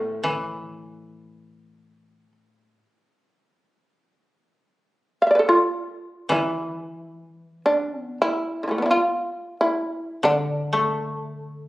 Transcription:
0.00 2.71 A2 soft
0.00 2.32 A3 medium
0.24 2.22 E3 soft
5.22 5.26 F5 soft
5.27 5.49 D5 soft
5.27 5.30 E5 soft
5.35 5.39 B4 soft
5.39 5.58 A4 soft
5.49 6.29 F4 medium
6.29 9.31 E3 soft
6.29 7.61 E4 medium
7.66 8.01 D4 medium
8.01 8.17 B3 medium
8.22 8.82 E4 medium
8.63 8.67 D3 soft
8.68 8.85 E3 soft
8.68 8.71 F3 soft
8.68 8.78 A3 soft
8.78 8.97 B3 soft
8.82 8.85 D4 soft
8.82 8.90 E4 soft
8.91 9.56 F4 medium
9.61 10.23 E4 medium
10.23 11.68 D3 soft
10.23 11.68 D4 medium
10.73 11.68 A3 soft

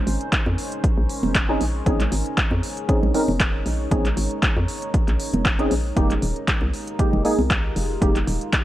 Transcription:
0.00 8.64 G#3 medium
0.00 5.93 C#4 medium
0.00 8.64 D#4 medium
0.00 8.64 A#4 medium
0.00 1.82 C5 medium
0.07 0.18 G#1 medium
0.07 open hi-hat loud
0.21 closed hi-hat soft
0.33 kick loud
0.33 clap loud
0.33 closed hi-hat medium
0.46 0.56 F2 loud
0.46 high conga medium
0.58 open hi-hat medium
0.72 closed hi-hat medium
0.84 kick loud
0.84 closed hi-hat medium
0.98 1.07 A#1 loud
1.09 open hi-hat loud
1.23 1.57 F1 medium
1.23 high conga medium
1.23 low conga medium
1.35 kick loud
1.35 clap loud
1.35 closed hi-hat medium
1.49 1.64 C4 loud
1.49 1.64 C#4 medium
1.49 1.64 D#4 medium
1.49 1.64 G#4 loud
1.61 1.82 A#1 medium
1.61 open hi-hat medium
1.86 2.08 A#1 medium
1.86 2.03 C4 medium
1.86 2.03 C#4 medium
1.86 2.03 D#4 medium
1.86 2.03 G#4 loud
1.86 5.93 C#5 medium
1.86 kick loud
1.86 closed hi-hat medium
1.86 high conga medium
2.00 clap soft
2.00 closed hi-hat soft
2.00 low conga loud
2.12 2.23 G#1 loud
2.12 open hi-hat loud
2.26 closed hi-hat soft
2.38 kick loud
2.38 clap loud
2.38 closed hi-hat medium
2.51 2.61 F2 loud
2.51 high conga medium
2.63 open hi-hat medium
2.77 closed hi-hat soft
2.88 3.11 C4 medium
2.88 3.12 C#4 medium
2.88 3.12 D#4 medium
2.88 3.12 G#4 medium
2.88 kick loud
2.88 closed hi-hat medium
3.03 3.12 A#1 medium
3.03 low conga loud
3.14 3.31 C4 medium
3.14 3.31 C#4 medium
3.14 3.31 D#4 medium
3.14 3.31 A#4 medium
3.14 open hi-hat loud
3.28 3.62 F1 medium
3.28 high conga medium
3.40 kick loud
3.40 clap loud
3.40 closed hi-hat medium
3.66 3.87 A#1 medium
3.66 open hi-hat medium
3.91 4.13 A#1 medium
3.91 4.08 C4 medium
3.91 4.08 C#4 medium
3.91 4.08 D#4 medium
3.91 4.08 G#4 medium
3.91 kick loud
3.91 closed hi-hat medium
3.91 high conga medium
4.05 clap soft
4.05 closed hi-hat soft
4.05 low conga medium
4.17 4.28 G#1 medium
4.17 open hi-hat loud
4.31 closed hi-hat soft
4.43 kick loud
4.43 clap loud
4.43 closed hi-hat medium
4.57 4.66 F2 loud
4.57 high conga medium
4.68 open hi-hat medium
4.82 closed hi-hat soft
4.94 kick loud
4.94 closed hi-hat medium
5.08 5.18 A#1 loud
5.08 clap soft
5.08 closed hi-hat soft
5.20 open hi-hat medium
5.34 5.68 F1 medium
5.34 closed hi-hat soft
5.34 high conga medium
5.34 low conga medium
5.45 kick loud
5.45 clap loud
5.45 closed hi-hat medium
5.59 5.74 C4 medium
5.59 5.74 C#4 medium
5.59 5.74 D#4 medium
5.59 5.74 G#4 loud
5.59 closed hi-hat soft
5.71 5.92 A#1 medium
5.71 open hi-hat medium
5.96 6.18 F1 medium
5.96 6.13 G#3 medium
5.96 6.13 A#3 medium
5.96 6.13 D#4 medium
5.96 8.64 F4 medium
5.96 8.64 G4 medium
5.96 6.13 G4 loud
5.96 kick loud
5.96 closed hi-hat medium
5.96 high conga medium
6.10 clap soft
6.10 closed hi-hat soft
6.10 low conga medium
6.22 6.34 D#1 medium
6.22 open hi-hat loud
6.36 closed hi-hat soft
6.48 kick loud
6.48 clap loud
6.48 closed hi-hat medium
6.61 6.71 C2 loud
6.61 high conga medium
6.74 open hi-hat medium
6.87 closed hi-hat soft
6.99 7.22 G#3 medium
6.99 7.22 A#3 medium
6.99 7.22 D#4 medium
6.99 7.22 G4 medium
6.99 kick loud
6.99 closed hi-hat medium
7.13 7.23 F1 loud
7.13 low conga medium
7.24 7.41 G#3 medium
7.24 7.41 A#3 medium
7.24 7.41 D#4 medium
7.24 7.42 G#4 medium
7.24 open hi-hat loud
7.39 7.73 C2 medium
7.39 high conga medium
7.50 kick loud
7.50 clap loud
7.50 closed hi-hat medium
7.76 7.97 F1 medium
7.76 open hi-hat medium
8.01 8.23 F1 loud
8.01 8.18 G#3 medium
8.01 8.18 A#3 medium
8.01 8.18 D#4 medium
8.01 8.18 G4 medium
8.01 kick loud
8.01 closed hi-hat medium
8.01 high conga medium
8.16 clap soft
8.16 closed hi-hat soft
8.16 low conga medium
8.27 8.39 D#1 medium
8.27 open hi-hat loud
8.41 closed hi-hat soft
8.53 kick loud
8.53 clap loud
8.53 closed hi-hat medium

